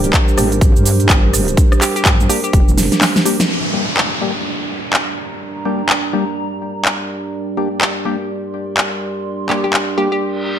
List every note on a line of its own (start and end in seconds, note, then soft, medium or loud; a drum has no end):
0.00 0.12 G1 loud
0.00 3.45 G3 medium
0.00 3.48 D4 medium
0.00 3.45 G4 medium
0.00 3.45 A#4 medium
0.00 3.50 A#4 medium
0.00 3.46 C5 medium
0.00 3.50 G5 medium
0.00 3.50 A#5 medium
0.00 closed hi-hat medium
0.04 shaker soft
0.13 kick loud
0.13 clap loud
0.13 closed hi-hat medium
0.13 shaker soft
0.28 shaker soft
0.37 0.74 G#1 medium
0.37 0.49 G3 medium
0.37 0.49 A#3 medium
0.37 0.49 D4 medium
0.37 0.49 G4 medium
0.37 cross-stick medium
0.37 open hi-hat loud
0.37 shaker medium
0.52 closed hi-hat medium
0.52 shaker soft
0.61 kick loud
0.61 closed hi-hat medium
0.61 shaker soft
0.76 1.08 G2 loud
0.76 shaker soft
0.85 open hi-hat loud
0.85 shaker medium
1.00 closed hi-hat medium
1.00 shaker soft
1.09 1.56 G1 medium
1.09 kick loud
1.09 clap loud
1.09 closed hi-hat medium
1.09 shaker soft
1.33 cross-stick medium
1.33 open hi-hat loud
1.33 shaker medium
1.48 closed hi-hat medium
1.48 shaker soft
1.57 kick loud
1.57 closed hi-hat medium
1.57 shaker soft
1.72 cross-stick medium
1.72 shaker soft
1.81 1.91 G4 medium
1.81 clap medium
1.81 open hi-hat loud
1.81 shaker medium
1.96 2.02 G4 medium
1.96 closed hi-hat medium
1.96 shaker soft
2.05 2.28 G2 loud
2.05 kick loud
2.05 clap loud
2.05 closed hi-hat medium
2.05 shaker soft
2.20 shaker soft
2.29 2.41 G3 medium
2.29 2.41 A#3 medium
2.29 2.41 D4 medium
2.29 2.39 G4 medium
2.29 2.41 G4 loud
2.29 open hi-hat loud
2.29 shaker medium
2.44 2.50 G4 medium
2.44 closed hi-hat medium
2.44 shaker soft
2.53 2.90 F1 loud
2.53 kick loud
2.53 closed hi-hat medium
2.53 shaker soft
2.68 shaker soft
2.78 snare medium
2.78 open hi-hat loud
2.78 shaker medium
2.92 snare medium
2.92 closed hi-hat medium
2.92 shaker soft
3.01 snare medium
3.01 clap loud
3.01 open hi-hat medium
3.01 shaker soft
3.16 snare medium
3.16 shaker soft
3.25 3.37 G3 medium
3.25 3.37 A#3 medium
3.25 3.37 D4 medium
3.25 3.37 G4 loud
3.25 open hi-hat loud
3.25 shaker medium
3.40 snare medium
3.40 closed hi-hat medium
3.40 shaker soft
3.49 10.59 G3 medium
3.49 10.59 D4 medium
3.49 10.59 G4 medium
3.49 10.59 A#4 medium
3.49 10.59 D5 medium
3.49 downlifter medium
3.65 10.59 A#4 medium
3.73 3.85 G3 medium
3.73 3.85 A#3 medium
3.73 3.85 D4 medium
3.73 3.85 G4 medium
3.96 10.59 G5 medium
3.96 clap loud
4.21 4.33 G3 medium
4.21 4.33 A#3 medium
4.21 4.33 D4 medium
4.21 4.33 G4 medium
4.63 8.06 A#5 medium
4.93 clap loud
5.65 5.82 G3 medium
5.65 5.82 A#3 medium
5.65 5.82 D4 medium
5.65 5.82 G4 loud
5.89 clap loud
6.13 6.24 G3 medium
6.13 6.24 A#3 medium
6.13 6.24 D4 medium
6.13 6.24 G4 medium
6.85 clap loud
7.57 7.68 G3 medium
7.57 7.68 A#3 medium
7.57 7.68 D4 medium
7.57 7.68 G4 medium
7.81 clap loud
7.93 10.59 C6 medium
8.05 8.16 G3 medium
8.05 8.16 A#3 medium
8.05 8.16 D4 medium
8.05 8.17 G4 medium
8.77 clap loud
9.49 9.66 G3 medium
9.49 9.66 A#3 medium
9.49 9.66 D4 medium
9.49 9.59 G4 medium
9.49 9.66 G4 loud
9.49 clap medium
9.64 9.70 G4 medium
9.73 clap loud
9.98 10.09 G3 medium
9.98 10.09 A#3 medium
9.98 10.09 D4 medium
9.98 10.09 G4 loud
9.98 10.07 G4 medium
10.12 10.18 G4 medium
10.22 reverse cymbal medium